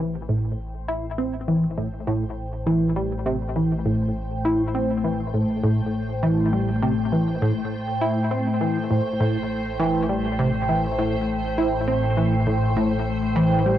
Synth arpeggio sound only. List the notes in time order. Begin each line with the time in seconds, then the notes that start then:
0.00 E3
0.29 A2
0.88 E4
1.18 C4
1.48 E3
1.78 A2
2.07 A2
2.67 E3
2.96 G3
3.26 C3
3.56 E3
3.85 A2
4.45 E4
4.74 C4
5.04 E3
5.34 A2
5.64 A2
6.23 E3
6.53 G3
6.82 C3
7.12 E3
7.42 A2
8.01 E4
8.31 C4
8.61 E3
8.91 A2
9.20 A2
9.80 E3
10.09 G3
10.39 C3
10.69 E3
10.98 A2
11.58 E4
11.88 C4
12.17 E3
12.47 A2
12.77 A2
13.36 E3
13.66 G3